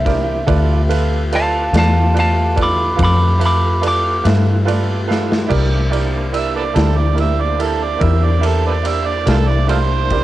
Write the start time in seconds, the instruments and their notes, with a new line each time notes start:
Already playing: fingered electric bass C2, tonewheel organ A#3 D4 E4 C5, lead electric guitar E5
0.05 upright piano E4 G4 A#4 D5, kick, snare, ride
0.47 fingered electric bass D2, tonewheel organ A3 F4 G4 B4, upright piano F4 A4 B4 D5, kick, ride
0.89 upright piano F4 A4 B4 E5, ride
1.32 upright piano F4 A4 B4 D5, lead electric guitar F5 A5, ride
1.73 fingered electric bass E2, upright piano F4 A4 B4 D5, snare, ride
1.78 lead electric guitar F5 A5
2.13 upright piano F4 A4 B4 D5, ride
2.19 lead electric guitar F5 A5
2.56 upright piano F4 A4 B4 D5, kick, ride
2.62 lead electric guitar B5 D6
2.96 fingered electric bass F2, upright piano F4 A4 B4 F5, kick, ride
3.03 lead electric guitar B5 D6
3.38 upright piano F4 A4 B4 E5, ride
3.46 lead electric guitar B5 D6
3.81 upright piano F4 A4 B4 D5, ride
3.88 lead electric guitar D6
4.24 fingered electric bass G2, upright piano F4 A4 B4 E5, snare, ride
4.65 upright piano F4 A4 B4 D5, ride
5.07 upright piano F4 A4 B4 F5, snare
5.32 snare
5.47 fingered electric bass C2, upright piano E4 G4 A#4 D5, kick
5.51 tonewheel organ A#3 D4 E4 C5, crash
5.90 upright piano E4 G4 A#4 D5, ride
6.32 upright piano E4 G4 A#4 D5, harmonica E5, ride
6.56 harmonica A4 B4 D5
6.73 fingered electric bass D2, upright piano E4 G4 A#4 D5, harmonica A4, snare, ride
6.97 harmonica D5
7.14 upright piano E4 G4 A#4 D5, ride
7.20 harmonica E5
7.41 harmonica D5
7.58 upright piano E4 G4 A#4 E5, ride
7.62 harmonica A4
7.84 harmonica D5
7.99 fingered electric bass E2, upright piano E4 G4 A#4 D5, kick, ride
8.03 harmonica E5
8.24 harmonica D5
8.40 upright piano E4 G4 A#4 E5, ride
8.47 harmonica A4
8.67 harmonica A4 B4 D5
8.83 upright piano E4 G4 A#4 D5, ride
8.88 harmonica E5
9.07 harmonica D5
9.25 fingered electric bass C2, harmonica D4 F4 A4, upright piano E4 G4 A#4 D5, snare, ride
9.48 harmonica D5
9.68 upright piano E4 G4 A#4 D5, harmonica F4 A4 C5, ride
10.10 upright piano E4 G4 A#4 D5, kick, ride